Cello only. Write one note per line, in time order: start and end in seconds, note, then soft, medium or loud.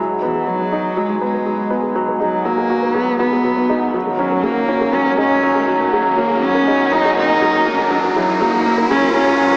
0.21 0.49 E3 medium
0.47 0.99 F#3 medium
0.98 1.22 G#3 medium
1.22 1.93 G#3 medium
2.21 2.47 F#3 medium
2.46 2.95 A#3 medium
2.94 3.18 B3 loud
3.19 3.90 B3 medium
4.18 4.45 F#3 medium
4.43 4.96 A#3 loud
4.94 5.18 C#4 loud
5.19 5.89 C#4 medium
6.18 6.45 A#3 medium
6.43 6.94 C#4 loud
6.92 7.17 D#4 loud
7.18 7.88 D#4 medium
8.15 8.42 F#3 medium
8.41 8.90 A#3 loud
8.91 9.14 C#4 loud
9.17 9.57 C#4 loud